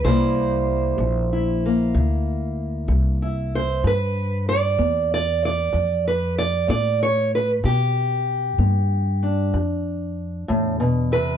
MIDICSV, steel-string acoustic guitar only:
0, 0, Header, 1, 2, 480
1, 0, Start_track
1, 0, Tempo, 632911
1, 30, Time_signature, 12, 3, 24, 8
1, 8623, End_track
2, 0, Start_track
2, 0, Title_t, "Steel-string acoustic guitar"
2, 0, Program_c, 0, 25
2, 34, Note_on_c, 0, 72, 98
2, 39, Note_on_c, 0, 48, 85
2, 45, Note_on_c, 0, 55, 56
2, 50, Note_on_c, 0, 58, 54
2, 58, Note_on_c, 0, 64, 52
2, 466, Note_off_c, 0, 48, 0
2, 757, Note_off_c, 0, 55, 0
2, 760, Note_on_c, 0, 55, 62
2, 997, Note_off_c, 0, 64, 0
2, 1006, Note_on_c, 0, 64, 45
2, 1187, Note_off_c, 0, 55, 0
2, 1240, Note_off_c, 0, 58, 0
2, 1256, Note_on_c, 0, 58, 47
2, 1472, Note_off_c, 0, 72, 0
2, 1475, Note_on_c, 0, 48, 67
2, 1904, Note_off_c, 0, 48, 0
2, 2186, Note_on_c, 0, 55, 66
2, 2434, Note_off_c, 0, 64, 0
2, 2443, Note_on_c, 0, 64, 49
2, 2620, Note_off_c, 0, 55, 0
2, 2695, Note_on_c, 0, 72, 99
2, 2887, Note_off_c, 0, 64, 0
2, 2913, Note_on_c, 0, 43, 80
2, 2922, Note_off_c, 0, 72, 0
2, 2923, Note_off_c, 0, 58, 0
2, 2936, Note_on_c, 0, 71, 96
2, 3343, Note_off_c, 0, 43, 0
2, 3400, Note_off_c, 0, 71, 0
2, 3403, Note_on_c, 0, 74, 104
2, 3628, Note_on_c, 0, 59, 59
2, 3876, Note_off_c, 0, 74, 0
2, 3897, Note_on_c, 0, 74, 106
2, 4061, Note_off_c, 0, 59, 0
2, 4123, Note_off_c, 0, 74, 0
2, 4135, Note_on_c, 0, 74, 98
2, 4342, Note_on_c, 0, 43, 67
2, 4602, Note_off_c, 0, 74, 0
2, 4607, Note_on_c, 0, 71, 92
2, 4778, Note_off_c, 0, 43, 0
2, 4839, Note_off_c, 0, 71, 0
2, 4842, Note_on_c, 0, 74, 97
2, 5067, Note_on_c, 0, 59, 73
2, 5070, Note_off_c, 0, 74, 0
2, 5079, Note_on_c, 0, 74, 104
2, 5315, Note_off_c, 0, 74, 0
2, 5328, Note_on_c, 0, 73, 96
2, 5501, Note_off_c, 0, 59, 0
2, 5559, Note_off_c, 0, 73, 0
2, 5574, Note_on_c, 0, 71, 85
2, 5695, Note_off_c, 0, 71, 0
2, 5791, Note_on_c, 0, 43, 81
2, 5803, Note_on_c, 0, 67, 80
2, 6223, Note_off_c, 0, 43, 0
2, 6514, Note_on_c, 0, 59, 62
2, 6945, Note_off_c, 0, 59, 0
2, 6997, Note_on_c, 0, 62, 44
2, 7232, Note_on_c, 0, 43, 65
2, 7237, Note_off_c, 0, 67, 0
2, 7664, Note_off_c, 0, 43, 0
2, 7950, Note_on_c, 0, 45, 64
2, 8187, Note_off_c, 0, 45, 0
2, 8190, Note_on_c, 0, 47, 62
2, 8431, Note_off_c, 0, 47, 0
2, 8432, Note_on_c, 0, 48, 56
2, 8438, Note_on_c, 0, 71, 98
2, 8623, Note_off_c, 0, 48, 0
2, 8623, Note_off_c, 0, 62, 0
2, 8623, Note_off_c, 0, 71, 0
2, 8623, End_track
0, 0, End_of_file